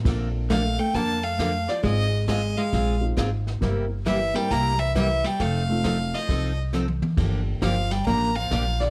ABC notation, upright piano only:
X:1
M:4/4
L:1/8
Q:"Swing" 1/4=135
K:Bb
V:1 name="Upright piano"
[B,CDFA]4- [B,CDFA] z3 | [_A,CEF_A] z4 [A,CEFA]3 | [B,C=EGB] z2 [B,CEGB] z4 | z [A,CEFA]3 z4 |
[B,DFGA]3 z4 z |]